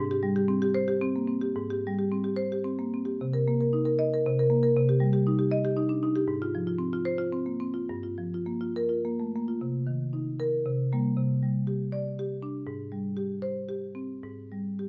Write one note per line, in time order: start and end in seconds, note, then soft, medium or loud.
0.00 1.51 G#2 loud
0.11 0.32 G4 medium
0.23 0.44 G3 medium
0.36 0.57 G4 medium
0.48 0.70 C4 medium
0.62 0.83 G4 medium
0.75 0.96 C5 loud
0.88 1.09 G4 medium
1.02 1.23 C4 medium
1.16 1.29 A#3 medium
1.27 1.50 C4 medium
1.41 1.56 G4 medium
1.56 3.15 G#2 medium
1.71 1.92 G4 medium
1.87 2.07 G3 medium
1.99 2.19 G4 medium
2.12 2.33 C4 medium
2.24 2.46 G4 medium
2.36 2.59 C5 medium
2.52 2.73 G4 medium
2.64 2.87 C4 medium
2.79 2.92 A#3 medium
2.94 3.15 C4 medium
3.05 3.19 G4 medium
3.21 4.23 C3 medium
3.33 3.55 A#4 medium
3.48 3.68 A#3 medium
3.61 3.81 A#4 medium
3.73 3.94 D#4 medium
3.85 4.07 A#4 medium
3.99 4.20 D#5 loud
4.14 4.26 A#4 medium
4.27 4.75 C3 medium
4.39 4.59 A#4 medium
4.50 4.71 A#3 medium
4.63 4.76 A#4 medium
4.76 6.23 C3 medium
4.89 5.09 G4 medium
5.00 5.21 G3 medium
5.13 5.34 G4 medium
5.27 5.47 D#4 medium
5.39 5.59 G4 medium
5.51 5.72 D#5 loud
5.65 5.85 G4 medium
5.76 5.97 D#4 medium
5.89 6.02 D4 medium
6.03 6.23 D#4 medium
6.16 6.28 G4 medium
6.28 7.84 G#2 medium
6.42 6.62 F4 medium
6.55 6.75 F3 medium
6.67 6.88 F4 medium
6.79 7.00 C4 medium
6.93 7.14 F4 medium
7.05 7.27 C5 medium
7.18 7.40 F4 medium
7.32 7.54 C4 medium
7.46 7.60 A#3 soft
7.60 7.82 C4 medium
7.74 7.88 F4 medium
7.89 9.57 G2 medium
8.03 8.26 F4 medium
8.18 8.40 F3 soft
8.34 8.56 F4 medium
8.46 8.69 A#3 medium
8.61 8.84 F4 medium
8.76 8.99 A#4 medium
8.89 9.13 F4 medium
9.05 9.28 A#3 medium
9.20 9.33 A3 soft
9.36 9.56 A#3 medium
9.48 9.61 F4 medium
9.61 10.63 C3 medium
9.87 10.28 D#3 soft
10.13 10.55 D#4 medium
10.40 10.66 A#4 medium
10.66 11.15 C3 medium
10.92 11.15 G3 medium
10.92 11.15 A#3 medium
11.17 12.64 C3 medium
11.43 11.83 G3 soft
11.67 12.07 G4 soft
11.92 12.33 D5 medium
12.19 12.58 G4 medium
12.42 12.67 D4 medium
12.67 14.19 G#2 medium
12.92 13.33 G3 medium
13.17 13.59 G4 medium
13.42 13.85 C5 medium
13.69 14.12 G4 medium
13.95 14.23 C4 medium
14.23 14.89 G#2 medium
14.52 14.89 G3 soft
14.79 14.89 G4 soft